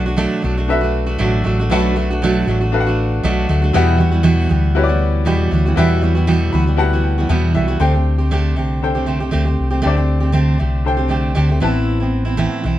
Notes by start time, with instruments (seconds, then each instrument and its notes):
Already playing: fingered electric bass B1, upright piano D4 F#4 A4 B4 F#5
0.06 steel-string acoustic guitar A3 D4 F#4
0.17 steel-string acoustic guitar B2 F#3 A3 D4 F#4
0.42 fingered electric bass B1, steel-string acoustic guitar F#3 A3 D4 F#4
0.57 steel-string acoustic guitar A3 D4 F#4
0.68 upright piano D4 F#4 A4 B4 E5
0.81 steel-string acoustic guitar A3 D4 F#4
1.06 steel-string acoustic guitar A3 D4 F#4
1.18 fingered electric bass A1, steel-string acoustic guitar B2 F#3 A3 D4 F#4
1.44 fingered electric bass A1, steel-string acoustic guitar F#3 A3 D4 F#4
1.59 steel-string acoustic guitar A3 D4 F#4
1.70 fingered electric bass B1, steel-string acoustic guitar B2 F#3 A3 D4 F#4, upright piano D4 F#4 A4 B4 F#5
1.96 steel-string acoustic guitar F#3 A3 D4 F#4
2.10 steel-string acoustic guitar A3 D4 F#4
2.22 steel-string acoustic guitar B2 F#3 A3 D4 F#4
2.47 fingered electric bass A1, steel-string acoustic guitar F#3 A3 D4 F#4
2.61 steel-string acoustic guitar A3 D4 F#4
2.72 upright piano D4 F#4 A4 B4 F5
2.80 upright piano F#5
2.87 steel-string acoustic guitar A3 D4 F#4
3.23 fingered electric bass B1, steel-string acoustic guitar B2 F#3 A3 D4 F#4
3.49 fingered electric bass D2, steel-string acoustic guitar F#3 A3 D4 F#4
3.62 steel-string acoustic guitar A3 D4 F#4
3.73 steel-string acoustic guitar E2 B2 E3 G3 B3 F#4, fingered electric bass E2, upright piano E4 F#4 G4 B4 F#5
3.98 steel-string acoustic guitar E3 G3 B3 F#4
4.11 steel-string acoustic guitar E3 G3 B3 F#4
4.23 steel-string acoustic guitar E2 B2 E3 G3 B3 F#4
4.49 fingered electric bass D2, steel-string acoustic guitar E3 G3 B3 F#4
4.75 upright piano E4 F#4 G4 B4 C#5
4.83 upright piano D5
4.88 steel-string acoustic guitar E3 G3 B3 F#4
5.25 steel-string acoustic guitar E2 B2 E3 G3 B3 F#4, fingered electric bass E2
5.51 fingered electric bass D2, steel-string acoustic guitar E3 G3 B3 F#4
5.66 steel-string acoustic guitar E3 G3 B3 F#4
5.76 fingered electric bass E2, steel-string acoustic guitar E2 B2 E3 G3 B3 F#4, upright piano E4 F#4 G4 B4 E5
6.01 steel-string acoustic guitar E3 G3 B3 F#4
6.15 steel-string acoustic guitar E3 G3 B3 F#4
6.27 steel-string acoustic guitar E2 B2 E3 G3 B3 F#4
6.52 fingered electric bass D2, steel-string acoustic guitar E3 G3 B3 F#4, upright piano B5
6.66 steel-string acoustic guitar E3 G3 B3 F#4
6.77 upright piano E4 F#4 G4 B4 F#5 A5
6.93 steel-string acoustic guitar E3 G3 B3 F#4
7.04 upright piano G5
7.18 steel-string acoustic guitar E3 G3 B3 F#4
7.29 steel-string acoustic guitar E2 B2 E3 G3 B3 F#4, fingered electric bass E2, upright piano F#5
7.54 fingered electric bass C2, steel-string acoustic guitar E3 G3 B3 F#4, upright piano E5
7.68 steel-string acoustic guitar E3 G3 B3 F#4
7.79 fingered electric bass D2, steel-string acoustic guitar D3 A3 C4 G4, upright piano D4 A4 C5 G5
7.94 steel-string acoustic guitar A3 C4 G4
8.18 steel-string acoustic guitar A3 C4 G4
8.31 steel-string acoustic guitar D3 A3 C4 G4
8.56 fingered electric bass C2, steel-string acoustic guitar D3 A3 C4 G4
8.82 upright piano D4 A4 C5 G5
8.95 steel-string acoustic guitar A3 C4 G4
9.06 steel-string acoustic guitar D3 A3 C4 G4
9.20 steel-string acoustic guitar A3 C4 G4
9.31 fingered electric bass D2, steel-string acoustic guitar D3 A3 C4 G4
9.45 steel-string acoustic guitar A3 C4 G4
9.59 fingered electric bass C2
9.70 steel-string acoustic guitar A3 C4 G4
9.82 fingered electric bass D2, steel-string acoustic guitar D3 A3 C4 G4, upright piano D4
9.86 upright piano A4 C5 D5
9.97 steel-string acoustic guitar A3 C4 G4
10.20 steel-string acoustic guitar A3 C4 G4
10.32 steel-string acoustic guitar D3 A3 C4 G4
10.58 fingered electric bass C2, steel-string acoustic guitar D3 A3 C4 G4
10.85 upright piano D4 A4 C5 G5
10.97 steel-string acoustic guitar A3 C4 G4
11.08 steel-string acoustic guitar D3 A3 C4 G4
11.35 fingered electric bass D2, steel-string acoustic guitar D3 A3 C4 G4
11.49 steel-string acoustic guitar A3 C4 G4
11.60 fingered electric bass A1, steel-string acoustic guitar A2 E3 B3 C4 E4, upright piano C4 E4 B4 A5
12.00 steel-string acoustic guitar B3 C4 E4
12.25 steel-string acoustic guitar B3 C4 E4
12.37 steel-string acoustic guitar A2 E3 B3 C4 E4
12.64 fingered electric bass B1, steel-string acoustic guitar E3 B3 C4 E4